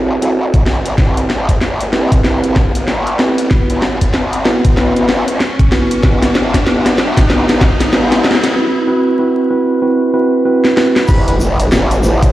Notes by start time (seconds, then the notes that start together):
Already playing: F#1 C4 E4 F#4 A4, riser
0.22 C4 E4 F#4 A4, closed hi-hat
0.54 kick, closed hi-hat
0.66 A1, snare
0.86 closed hi-hat
0.98 A1 C4 E4 G4 B4, kick, snare
1.17 closed hi-hat
1.30 snare
1.49 kick, closed hi-hat
1.61 A1, snare
1.81 closed hi-hat
1.93 C4 E4 G4 B4, snare
2.12 kick, closed hi-hat
2.24 G1 C4 E4 G4 B4, snare
2.44 closed hi-hat
2.56 kick, snare
2.75 A1, closed hi-hat
2.88 snare
3.07 closed hi-hat
3.19 C4 E4 G4 B4, snare
3.38 closed hi-hat
3.51 B3 E4 F#4 B4, kick, snare
3.70 F#2, closed hi-hat
3.82 snare
4.01 B1, kick, closed hi-hat
4.14 snare
4.33 closed hi-hat
4.45 B3 E4 F#4 B4, snare
4.65 kick, closed hi-hat
4.77 B3 E4 F#4 B4, snare
4.96 B1, closed hi-hat
5.09 E2, snare
5.28 closed hi-hat
5.40 snare
5.59 kick, closed hi-hat
5.72 B3 E4 F#4 B4, snare
5.91 closed hi-hat
6.03 E1 B3 E4 G4 B4, kick, snare
6.23 snare, closed hi-hat
6.35 snare
6.54 kick, snare, closed hi-hat
6.67 E1 B3 E4 G4 B4, snare
6.86 snare, closed hi-hat
6.98 snare
7.17 kick, snare, closed hi-hat
7.30 D2 B3 E4 G4 B4, snare
7.49 snare, closed hi-hat
7.61 kick, snare
7.80 E1, snare, closed hi-hat
7.93 B3 E4 G4 B4, snare
8.12 snare, closed hi-hat
8.24 snare
8.31 snare
8.35 snare
8.44 snare, closed hi-hat
8.56 C4 E4 F#4 B4
8.87 C4 E4 F#4 B4
9.19 C4 E4 F#4 B4
9.51 C4 E4 F#4 B4
9.82 C4 E4 F#4 B4
10.14 C4 E4 F#4 B4
10.45 C4 E4 F#4 B4
10.65 snare
10.77 C4 E4 F#4 B4, snare
10.96 snare
11.08 A1 B4, kick, crash, impact, shaker
11.27 B4, closed hi-hat
11.40 shaker
11.59 closed hi-hat, shaker
11.72 A1, snare, shaker
11.91 closed hi-hat, shaker
12.03 E4 G4 B4 C5, shaker
12.22 kick, closed hi-hat, shaker